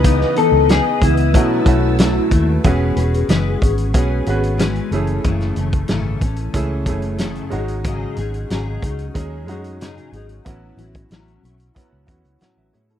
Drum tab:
HH |x-x-x-xxx-x-x-x-|x-xxx-xxx-xxxxxx|xxxxx-xxx-xxxxxx|x-xxx-xxx-xxxxxx|
SD |-o--o-------o---|----o-------o---|-o--o-------o---|----o-------o---|
BD |o-----o-o-o---o-|o-----o-o-------|o--o--o-o-o-----|o-----o-o-------|

HH |x-xxxxxxx-xxx-xx|
SD |----o-------o---|
BD |o--o----o-o-----|